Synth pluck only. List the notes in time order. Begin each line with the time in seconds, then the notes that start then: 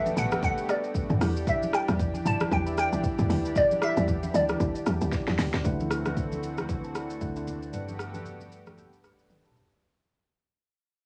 Already playing: E5
0.18 F#5
0.44 F#5
0.70 D5
1.49 E5
1.75 G5
2.27 A5
2.53 G5
2.79 G5
3.58 D5
3.84 E5
4.36 D5